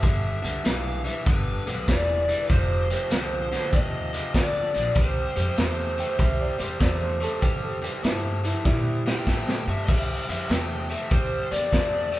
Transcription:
0.03 upright bass G1, overdriven electric guitar G2 D3, lead electric guitar E5, kick, closed hi-hat
0.42 upright bass C2, overdriven electric guitar G2 D3, closed hi-hat
0.64 upright bass B1, overdriven electric guitar G2 E3, lead electric guitar F5, snare, closed hi-hat
1.04 overdriven electric guitar G2 E3, lead electric guitar E5, closed hi-hat
1.25 upright bass G1, overdriven electric guitar G2 D3, lead electric guitar B4, kick, closed hi-hat
1.66 upright bass B1, overdriven electric guitar G2 D3, closed hi-hat
1.87 upright bass E1, overdriven electric guitar G2 E3, lead electric guitar D5, kick, snare, closed hi-hat
2.28 overdriven electric guitar G2 E3, closed hi-hat
2.47 upright bass F1, overdriven electric guitar F2 C3, lead electric guitar B4 C5, kick, closed hi-hat
2.90 overdriven electric guitar F2 C3, closed hi-hat
3.10 upright bass C2, overdriven electric guitar F2 D3, lead electric guitar C5, snare, closed hi-hat
3.52 overdriven electric guitar F2 D3, snare, closed hi-hat
3.72 upright bass D#2, overdriven electric guitar F2 C3, lead electric guitar D#5, kick, closed hi-hat
4.13 overdriven electric guitar F2 C3, closed hi-hat
4.34 upright bass D2, overdriven electric guitar F2 D3, lead electric guitar D5, kick, snare, closed hi-hat
4.74 upright bass A#1, overdriven electric guitar F2 D3, closed hi-hat
4.95 upright bass C2, overdriven electric guitar C3 G3, lead electric guitar C5, kick, closed hi-hat
5.36 upright bass F2, overdriven electric guitar C3 G3, closed hi-hat
5.57 upright bass E2, overdriven electric guitar C3 A3, snare, closed hi-hat
5.98 overdriven electric guitar C3 A3, upright piano G5, closed hi-hat
6.19 upright bass C2, overdriven electric guitar C3 G3, upright piano E5, kick, closed hi-hat
6.40 upright piano D5
6.58 upright bass E2, overdriven electric guitar C3 G3, upright piano C5, closed hi-hat
6.80 upright bass E2, overdriven electric guitar C3 A3, upright piano D5, kick, snare, closed hi-hat
7.02 upright piano C5
7.20 overdriven electric guitar C3 A3, upright piano A4, closed hi-hat
7.41 upright bass E2, overdriven electric guitar C3 G3, upright piano G4, kick, closed hi-hat
7.63 upright piano A4
7.82 overdriven electric guitar C3 G3, upright piano G4, closed hi-hat
8.03 upright bass G2, overdriven electric guitar C3 A3, upright piano E4, snare, closed hi-hat
8.44 overdriven electric guitar C3 A3, upright piano E4, closed hi-hat
8.65 upright bass A#2, overdriven electric guitar C3 G3, upright piano G3 E4, kick, snare
9.06 overdriven electric guitar C3 G3, lead electric guitar G5, snare
9.27 upright bass A2, overdriven electric guitar C3 A3, kick, snare
9.49 snare
9.67 upright bass G2, overdriven electric guitar C3 A3, lead electric guitar E5
9.85 upright bass C2, lead electric guitar D#5, kick, crash
9.89 overdriven electric guitar C3 G3, lead electric guitar E5
10.29 upright bass F2, overdriven electric guitar C3 G3, lead electric guitar E5, closed hi-hat
10.49 upright bass E2, overdriven electric guitar C3 A3, lead electric guitar G5, snare, closed hi-hat
10.90 overdriven electric guitar C3 A3, lead electric guitar E5, closed hi-hat
11.11 upright bass C2, overdriven electric guitar C3 G3, lead electric guitar C5, kick, closed hi-hat
11.51 upright bass E2, overdriven electric guitar C3 G3, lead electric guitar D5, closed hi-hat
11.72 upright bass E2, overdriven electric guitar C3 A3, kick, snare, closed hi-hat
12.12 overdriven electric guitar C3 A3, lead electric guitar D5, closed hi-hat

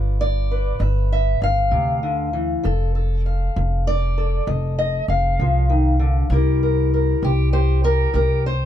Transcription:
Already playing: upright bass G1, steel-string acoustic guitar G2 B3 F4 B4 D5
0.21 steel-string acoustic guitar D5
0.51 steel-string acoustic guitar B4
0.80 upright bass G1, steel-string acoustic guitar G2 E5
1.12 steel-string acoustic guitar E5
1.42 upright bass G1, steel-string acoustic guitar F5
1.71 upright bass D2, steel-string acoustic guitar C3
2.03 steel-string acoustic guitar D3
2.33 steel-string acoustic guitar E3
2.63 upright bass F1, steel-string acoustic guitar F3 A4
2.95 steel-string acoustic guitar A4
3.26 steel-string acoustic guitar F5
3.56 upright bass F1, steel-string acoustic guitar F3
3.87 steel-string acoustic guitar D5
4.18 steel-string acoustic guitar A4
4.47 upright bass F1, steel-string acoustic guitar F3 D#5
4.79 steel-string acoustic guitar D#5
5.08 upright bass F1, steel-string acoustic guitar F5
5.39 upright bass C2, steel-string acoustic guitar F3
5.69 steel-string acoustic guitar D#3
5.99 steel-string acoustic guitar D3
6.30 upright bass C2, steel-string acoustic guitar C3 E4 G4 A#4
6.63 steel-string acoustic guitar A#4
6.94 steel-string acoustic guitar A#4
7.23 upright bass C2, steel-string acoustic guitar C3 G4 C5
7.53 steel-string acoustic guitar G4 C5
7.84 steel-string acoustic guitar G4 A#4
8.13 upright bass C2, steel-string acoustic guitar C3 G4 A#4
8.46 steel-string acoustic guitar C5

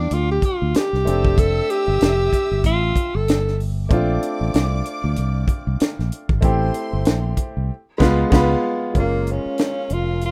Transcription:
Already playing: grand piano G3 A#3 D4 F4, tenor saxophone D4, violin section D5 D6
0.11 fingered electric bass D2, tenor saxophone F4, closed hi-hat
0.32 tenor saxophone G4
0.42 tenor saxophone F4, kick, closed hi-hat
0.62 fingered electric bass D2
0.74 tenor saxophone G4, muted fingered electric bass stroke, snare, closed hi-hat
0.93 fingered electric bass C2, snare
1.05 fingered electric bass F1, grand piano A3 C4 D4 G4, violin section E5 E6, closed hi-hat
1.25 kick
1.38 tenor saxophone A4, kick, closed hi-hat
1.70 tenor saxophone G4, closed hi-hat
1.88 fingered electric bass G1
2.01 fingered electric bass F1, snare, closed hi-hat
2.33 kick, closed hi-hat
2.51 fingered electric bass G1
2.64 fingered electric bass A1, tenor saxophone F4, kick, closed hi-hat
2.96 kick, closed hi-hat
3.15 fingered electric bass G1, tenor saxophone A4
3.28 snare, closed hi-hat
3.48 snare
3.60 open hi-hat
3.89 fingered electric bass A#1, grand piano A3 C4 D4 F4, violin section D5 D6, kick, closed hi-hat
4.23 closed hi-hat
4.41 fingered electric bass A1
4.54 fingered electric bass C2, snare, closed hi-hat
4.86 closed hi-hat
5.04 fingered electric bass D2
5.16 fingered electric bass C2, closed hi-hat
5.48 kick, closed hi-hat
5.67 fingered electric bass C2
5.80 muted fingered electric bass stroke, snare, closed hi-hat
5.99 fingered electric bass A#1, snare
6.12 closed hi-hat
6.29 fingered electric bass G#1, kick
6.41 fingered electric bass A1, grand piano A3 C4 E4 G4, violin section C5 C6, kick, closed hi-hat
6.74 closed hi-hat
6.93 fingered electric bass G1
7.05 fingered electric bass A#1, snare, closed hi-hat
7.37 kick, closed hi-hat
7.57 fingered electric bass C2
7.98 fingered electric bass C#2, grand piano G#3 B3 F4, violin section B4 B5, kick, snare, crash
8.30 fingered electric bass C#2, grand piano G#3 B3 F4, violin section B4 B5, kick, snare, crash
8.94 fingered electric bass F#1, grand piano G#3 A#3 C#4 F4, violin section C#4 A#4 F5, kick, closed hi-hat
8.99 tenor saxophone A#3
9.27 closed hi-hat
9.32 tenor saxophone C#4
9.46 muted fingered electric bass stroke
9.58 snare, closed hi-hat
9.90 fingered electric bass F1, tenor saxophone F4, closed hi-hat
10.21 closed hi-hat
10.25 tenor saxophone F4

